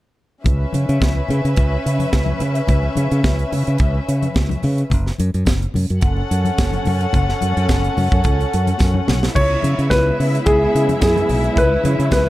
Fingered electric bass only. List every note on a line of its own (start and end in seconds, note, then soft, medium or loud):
0.46 0.64 C#2 medium
0.74 0.84 C#3 medium
0.89 0.97 C#3 medium
1.02 1.20 C#2 medium
1.30 1.40 C#3 medium
1.45 1.53 C#3 medium
1.58 1.76 C#2 medium
1.86 2.04 C#3 medium
2.13 2.32 C#2 medium
2.41 2.60 C#3 medium
2.69 2.87 C#2 medium
2.97 3.07 C#3 medium
3.12 3.20 C#3 medium
3.25 3.43 C#2 medium
3.53 3.62 C#3 medium
3.68 3.76 C#3 medium
3.80 3.98 C#2 loud
4.08 4.27 C#3 medium
4.36 4.54 C#2 medium
4.64 4.82 C#3 loud
4.92 5.10 F#1 loud
5.20 5.29 F#2 medium
5.34 5.43 F#2 medium
5.47 5.65 F#1 medium
5.75 5.85 F#2 medium
5.90 5.99 F#2 medium
6.03 6.21 F#1 loud
6.31 6.49 F#2 medium
6.59 6.77 F#1 medium
6.87 7.05 F#2 medium
7.14 7.33 F#1 loud
7.42 7.52 F#2 medium
7.57 7.65 F#2 medium
7.69 7.88 F#1 loud
7.98 8.07 F#2 medium
8.12 8.21 F#2 medium
8.25 8.43 C#2 medium
8.54 8.72 F#2 medium
8.81 8.99 F#2 medium
9.09 9.27 B1 medium
9.36 9.54 C#2 medium
9.64 9.73 C#3 medium
9.79 9.87 C#3 medium
9.92 10.10 C#2 loud
10.20 10.38 C#3 medium
10.47 10.65 C#2 loud
10.75 10.93 C#3 medium
11.02 11.20 F#2 medium
11.30 11.48 B1 medium
11.58 11.76 C#2 medium
11.85 11.94 C#3 loud
11.99 12.08 C#3 medium
12.12 12.29 C#2 medium